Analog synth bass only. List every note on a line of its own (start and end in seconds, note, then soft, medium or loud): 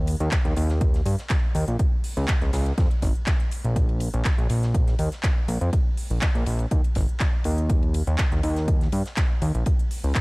0.00 0.16 D#2 medium
0.20 0.29 D#2 loud
0.45 0.54 D#2 loud
0.56 1.01 D#2 medium
1.06 1.16 G2 medium
1.55 1.65 D#2 medium
1.68 1.77 A#1 medium
2.17 2.26 C#2 loud
2.42 2.51 C#2 loud
2.53 2.72 C#2 loud
2.78 2.88 F2 medium
3.02 3.12 G#1 medium
3.65 4.09 A#1 medium
4.14 4.23 A#1 loud
4.38 4.47 A#1 loud
4.50 4.95 A#1 medium
4.99 5.09 D#2 medium
5.48 5.58 A#1 medium
5.61 5.70 F2 medium
6.10 6.19 A#1 loud
6.35 6.44 A#1 loud
6.47 6.66 A#1 loud
6.71 6.81 D#2 medium
6.96 7.06 G#1 loud
7.45 8.02 D#2 medium
8.07 8.16 D#2 loud
8.32 8.41 D#2 loud
8.43 8.88 D#2 medium
8.93 9.03 G2 medium
9.42 9.52 D#2 medium
9.55 9.64 A#1 medium
10.04 10.13 C#2 loud